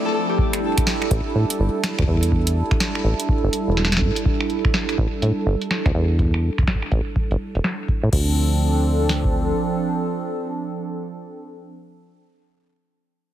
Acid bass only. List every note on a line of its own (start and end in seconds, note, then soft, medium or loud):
1.11 1.21 A1 loud
1.35 1.45 A2 medium
1.59 1.69 G1 loud
1.99 2.05 D2 loud
2.08 2.63 E2 medium
3.05 3.15 A1 loud
3.44 3.50 G1 loud
3.68 4.03 E1 loud
4.01 4.11 A2 loud
4.98 5.08 A1 loud
5.22 5.32 A2 medium
5.47 5.57 G1 loud
5.86 5.92 D2 medium
5.95 6.50 E2 medium
6.92 7.02 A1 loud
7.31 7.37 G1 medium
7.55 7.61 E1 loud
8.03 8.10 A2 medium
8.13 9.54 D2 medium